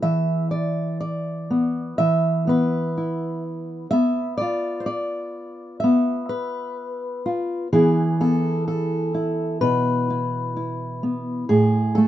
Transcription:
Already playing: B3 E4 G#4
0.02 E3 E5
0.51 D5
1.01 D5
1.51 B3
1.98 E3 E5
2.47 B3 B4
2.97 E4
3.91 B3 E5
4.38 F4 D5
4.80 C5
4.86 D5
5.80 B3 E5
6.29 B4
7.26 F4
7.73 E3 B3 E4 G#4
8.20 B3 A4
8.68 A4
9.14 E4
9.61 B2 B4
10.10 E4
10.57 E4
11.03 B3
11.49 A2 G#4
11.95 A3 A4

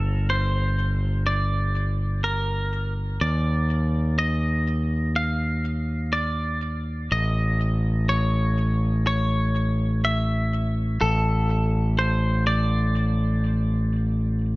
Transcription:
Already playing: G1 A4
0.30 C5
1.27 D5
2.24 A#4
3.21 D#2 D5
4.19 D#5
5.16 F5
6.13 D5
7.12 A1 D#5
8.09 C#5
9.07 C#5
10.05 E5
11.01 A1 A4
11.99 C5
12.47 D5

